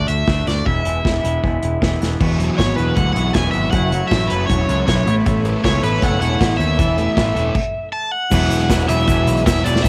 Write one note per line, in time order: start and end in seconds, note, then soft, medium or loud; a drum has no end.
0.00 0.26 D3 medium
0.08 0.22 D2 medium
0.08 0.27 A3 medium
0.08 0.28 D4 medium
0.08 0.29 F#4 medium
0.08 0.47 E5 medium
0.08 closed hi-hat medium
0.27 0.42 D2 medium
0.27 0.65 D3 medium
0.27 0.47 A3 medium
0.27 0.46 D4 medium
0.27 0.45 F#4 medium
0.27 kick loud
0.27 snare loud
0.46 0.61 D2 medium
0.46 0.65 A3 medium
0.46 0.65 D4 medium
0.46 0.65 F#4 medium
0.46 0.66 D5 medium
0.46 snare medium
0.46 closed hi-hat medium
0.65 0.80 E1 medium
0.65 1.02 E3 medium
0.65 0.86 G#3 medium
0.65 0.84 B3 medium
0.65 0.83 E4 loud
0.65 2.00 E5 medium
0.65 kick loud
0.84 0.99 E1 medium
0.84 1.03 G#3 medium
0.84 1.04 B3 medium
0.84 1.05 E4 medium
0.84 closed hi-hat medium
1.03 1.19 E1 medium
1.03 1.24 E3 medium
1.03 1.23 G#3 medium
1.03 1.22 B3 medium
1.03 1.21 E4 medium
1.03 kick loud
1.03 snare loud
1.22 1.38 E1 medium
1.22 1.41 E3 medium
1.22 1.42 G#3 medium
1.22 1.42 B3 medium
1.22 1.43 E4 medium
1.22 closed hi-hat medium
1.42 1.57 E1 medium
1.42 1.79 E3 medium
1.42 1.63 G#3 medium
1.42 1.62 B3 medium
1.42 1.60 E4 medium
1.42 kick loud
1.61 1.77 E1 medium
1.61 1.81 G#3 medium
1.61 1.81 B3 medium
1.61 1.82 E4 medium
1.61 closed hi-hat medium
1.81 1.96 E1 medium
1.81 2.18 E3 medium
1.81 2.02 G#3 medium
1.81 2.00 B3 medium
1.81 1.99 E4 medium
1.81 kick loud
1.81 snare loud
2.00 2.15 E1 medium
2.00 2.19 G#3 medium
2.00 2.19 B3 medium
2.00 2.18 E4 medium
2.00 snare medium
2.00 closed hi-hat medium
2.19 2.48 E1 medium
2.19 2.56 E3 medium
2.19 2.40 G#3 medium
2.19 2.38 B3 medium
2.19 3.71 F#4 medium
2.19 2.37 F#4 loud
2.19 5.05 E5 medium
2.19 3.72 G#5 medium
2.19 kick loud
2.19 crash loud
2.38 2.96 F#3 medium
2.38 2.56 G#3 medium
2.38 2.58 B3 medium
2.38 2.59 F#4 medium
2.38 closed hi-hat medium
2.57 2.73 G#1 medium
2.57 2.96 E3 medium
2.57 2.77 G#3 medium
2.57 2.76 B3 medium
2.57 2.75 F#4 medium
2.57 2.76 C#5 medium
2.57 kick loud
2.57 snare loud
2.57 closed hi-hat medium
2.76 2.92 E1 medium
2.76 2.96 G#3 medium
2.76 2.97 B3 medium
2.76 3.76 E4 medium
2.76 2.97 F#4 medium
2.76 2.96 B4 medium
2.76 closed hi-hat medium
2.96 3.11 D2 medium
2.96 3.17 E3 medium
2.96 3.34 F#3 medium
2.96 3.16 G#3 medium
2.96 3.15 B3 medium
2.96 3.14 F#4 medium
2.96 3.12 F#5 medium
2.96 kick loud
2.96 closed hi-hat medium
3.13 3.30 B1 medium
3.13 3.34 G#3 medium
3.13 3.35 B3 medium
3.13 3.36 F#4 medium
3.13 3.33 F#5 medium
3.13 closed hi-hat medium
3.18 3.34 E3 medium
3.33 3.49 E1 medium
3.33 3.72 E3 medium
3.33 3.72 F#3 medium
3.33 3.55 G#3 medium
3.33 3.54 B3 medium
3.33 3.53 F#4 medium
3.33 3.51 G#5 loud
3.33 kick loud
3.33 snare loud
3.33 closed hi-hat medium
3.51 3.68 G#1 medium
3.51 3.72 B3 medium
3.51 3.72 F#4 medium
3.51 3.71 E5 medium
3.51 closed hi-hat medium
3.56 3.73 G#3 medium
3.71 4.01 F#1 medium
3.71 4.09 F#3 medium
3.71 4.10 A3 medium
3.71 3.93 E4 loud
3.71 5.05 F#4 medium
3.71 3.92 F#4 loud
3.71 3.91 C#5 loud
3.71 4.08 F#5 loud
3.71 5.06 A5 medium
3.71 kick loud
3.71 closed hi-hat medium
3.91 4.48 F#3 medium
3.91 4.11 E4 medium
3.91 4.11 F#4 medium
3.91 4.12 C#5 medium
3.91 closed hi-hat medium
4.08 4.25 A1 medium
4.08 4.49 F#3 medium
4.08 4.48 A3 medium
4.08 4.68 C#4 medium
4.08 4.32 E4 medium
4.08 4.29 E5 medium
4.08 kick loud
4.08 snare loud
4.08 closed hi-hat medium
4.13 4.30 F#4 loud
4.13 4.29 C#5 medium
4.27 4.45 F#1 medium
4.27 4.49 F#4 medium
4.27 4.47 B4 medium
4.27 4.50 C#5 medium
4.27 closed hi-hat medium
4.32 4.49 E4 medium
4.47 4.64 E1 medium
4.47 4.87 F#3 medium
4.47 4.69 A3 medium
4.47 4.68 E4 medium
4.47 4.67 F#4 medium
4.47 4.86 C#5 medium
4.47 4.67 C#5 medium
4.47 kick loud
4.47 closed hi-hat medium
4.68 4.83 C#2 medium
4.68 5.07 F#3 medium
4.68 4.85 A3 medium
4.68 5.07 C#4 medium
4.68 4.87 E4 medium
4.68 4.87 F#4 medium
4.68 4.87 C#5 medium
4.68 closed hi-hat medium
4.86 5.02 B1 medium
4.86 5.06 F#3 medium
4.86 5.08 A3 medium
4.86 5.07 E4 medium
4.86 5.06 F#4 medium
4.86 5.14 C#5 medium
4.86 5.05 C#5 medium
4.86 kick loud
4.86 snare loud
4.86 closed hi-hat medium
5.06 5.21 A1 medium
5.06 5.24 A3 medium
5.06 5.25 B3 medium
5.06 5.26 E4 medium
5.06 5.26 A4 medium
5.06 7.53 A4 medium
5.06 5.26 C#5 medium
5.06 6.77 C#5 medium
5.06 7.53 B5 medium
5.06 closed hi-hat medium
5.24 5.54 A1 medium
5.24 5.63 A3 medium
5.24 5.64 B3 medium
5.24 5.46 E4 loud
5.24 5.45 A4 medium
5.24 5.43 C#5 loud
5.24 kick loud
5.24 closed hi-hat medium
5.44 6.01 B3 medium
5.44 5.64 E4 medium
5.44 5.65 A4 medium
5.44 5.64 C#5 medium
5.44 closed hi-hat medium
5.63 5.78 C#2 medium
5.63 6.04 A3 medium
5.63 6.01 B3 medium
5.63 5.84 E4 medium
5.63 5.83 A4 medium
5.63 5.84 C#5 medium
5.63 5.81 C#5 loud
5.63 kick loud
5.63 snare loud
5.63 closed hi-hat medium
5.82 5.97 A1 medium
5.82 6.01 E4 medium
5.82 6.01 A4 medium
5.82 6.03 B4 medium
5.82 6.02 C#5 medium
5.82 closed hi-hat medium
6.01 6.16 F#1 loud
6.01 6.21 B3 medium
6.01 6.20 E4 medium
6.01 6.20 A4 medium
6.01 6.19 C#5 medium
6.01 6.20 F#5 loud
6.01 kick loud
6.01 closed hi-hat medium
6.20 6.35 E1 medium
6.20 6.60 A3 medium
6.20 6.39 B3 medium
6.20 6.40 E4 medium
6.20 6.40 A4 medium
6.20 6.41 C#5 medium
6.20 6.57 F#5 loud
6.20 closed hi-hat medium
6.40 6.55 A1 medium
6.40 6.77 B3 medium
6.40 6.60 E4 medium
6.40 6.59 A4 medium
6.40 6.58 C#5 medium
6.40 kick loud
6.40 snare loud
6.40 closed hi-hat medium
6.57 6.80 D#2 medium
6.57 6.78 E4 medium
6.57 6.78 A4 medium
6.57 6.77 C#5 medium
6.57 7.88 E5 medium
6.57 closed hi-hat medium
6.78 7.07 E1 medium
6.78 7.14 E3 medium
6.78 6.98 B3 medium
6.78 6.97 E4 loud
6.78 6.96 A4 loud
6.78 7.54 E5 medium
6.78 kick loud
6.78 closed hi-hat loud
6.97 7.55 A3 medium
6.97 7.15 B3 medium
6.97 7.16 E4 medium
6.97 7.16 A4 medium
6.97 closed hi-hat medium
7.15 7.31 A1 medium
7.15 7.53 E3 medium
7.15 7.36 B3 loud
7.15 7.35 E4 loud
7.15 7.33 A4 medium
7.15 kick loud
7.15 snare loud
7.15 closed hi-hat medium
7.34 7.50 E1 medium
7.34 7.54 B3 medium
7.34 7.54 E4 medium
7.34 7.53 A4 medium
7.34 closed hi-hat medium
7.55 kick loud
7.55 crash medium
7.93 8.12 A5 medium
8.12 8.88 F#5 medium
8.30 8.49 E1 loud
8.30 8.68 E3 loud
8.30 8.68 F#3 loud
8.30 8.70 G#3 medium
8.30 8.69 B3 loud
8.30 8.69 E4 loud
8.30 9.89 F#4 medium
8.30 8.69 G#4 loud
8.30 9.89 E5 medium
8.30 9.89 G#5 loud
8.30 kick loud
8.30 crash loud
8.30 shaker loud
8.50 8.67 E1 medium
8.50 closed hi-hat medium
8.50 shaker medium
8.60 closed hi-hat soft
8.68 8.87 E1 medium
8.68 8.86 E3 medium
8.68 8.88 F#3 medium
8.68 8.89 G#3 medium
8.68 8.87 B3 medium
8.68 8.88 E4 medium
8.68 8.89 G#4 medium
8.68 kick loud
8.68 snare loud
8.68 closed hi-hat loud
8.68 shaker medium
8.79 closed hi-hat soft
8.87 9.05 E1 medium
8.87 9.06 E3 medium
8.87 9.07 F#3 medium
8.87 9.07 G#3 medium
8.87 9.07 B3 medium
8.87 9.07 E4 medium
8.87 9.08 G#4 medium
8.87 9.42 E5 medium
8.87 closed hi-hat medium
8.87 shaker medium
9.00 shaker soft
9.07 9.25 E1 medium
9.07 9.44 E3 loud
9.07 9.45 F#3 loud
9.07 9.45 G#3 loud
9.07 9.45 B3 loud
9.07 9.45 E4 loud
9.07 9.46 G#4 loud
9.07 kick loud
9.07 closed hi-hat loud
9.07 shaker medium
9.27 9.44 B1 medium
9.27 closed hi-hat medium
9.27 shaker medium
9.37 closed hi-hat soft
9.45 9.63 E1 loud
9.45 9.63 E3 medium
9.45 9.64 F#3 medium
9.45 9.64 G#3 medium
9.45 9.64 B3 medium
9.45 9.64 E4 medium
9.45 9.65 G#4 medium
9.45 9.66 E5 medium
9.45 kick loud
9.45 snare loud
9.45 closed hi-hat loud
9.45 shaker medium
9.56 closed hi-hat soft
9.64 9.82 E1 medium
9.64 9.82 E3 medium
9.64 9.83 F#3 loud
9.64 9.84 G#3 medium
9.64 9.83 B3 medium
9.64 9.83 E4 medium
9.64 9.84 G#4 medium
9.64 9.84 D5 medium
9.64 closed hi-hat medium
9.64 shaker medium
9.76 snare medium
9.83 9.89 E1 loud
9.83 9.89 E3 loud
9.83 9.89 F#3 loud
9.83 9.89 G#3 medium
9.83 9.89 B3 medium
9.83 9.89 E4 loud
9.83 9.89 G#4 loud
9.83 9.89 E5 medium
9.83 kick loud
9.83 closed hi-hat loud
9.83 shaker medium